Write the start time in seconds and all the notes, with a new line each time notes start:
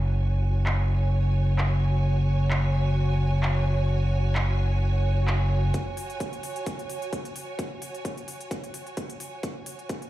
Already playing: F#1 F#4 C#5 G#5
0.66 clap
1.58 clap
2.51 clap
3.43 clap
4.35 clap
5.28 clap
5.74 kick, closed hi-hat
5.97 open hi-hat
6.10 closed hi-hat
6.20 kick, closed hi-hat
6.33 closed hi-hat
6.43 open hi-hat
6.56 closed hi-hat
6.66 kick, closed hi-hat
6.79 closed hi-hat
6.90 open hi-hat
7.02 closed hi-hat
7.13 kick, closed hi-hat
7.25 closed hi-hat
7.36 open hi-hat
7.59 kick, closed hi-hat
7.82 open hi-hat
7.95 closed hi-hat
8.05 kick, closed hi-hat
8.17 closed hi-hat
8.28 open hi-hat
8.41 closed hi-hat
8.51 kick, closed hi-hat
8.64 closed hi-hat
8.74 open hi-hat
8.87 closed hi-hat
8.97 kick, closed hi-hat
9.10 closed hi-hat
9.20 open hi-hat
9.43 kick, closed hi-hat
9.66 open hi-hat
9.79 closed hi-hat
9.89 kick, closed hi-hat
10.02 closed hi-hat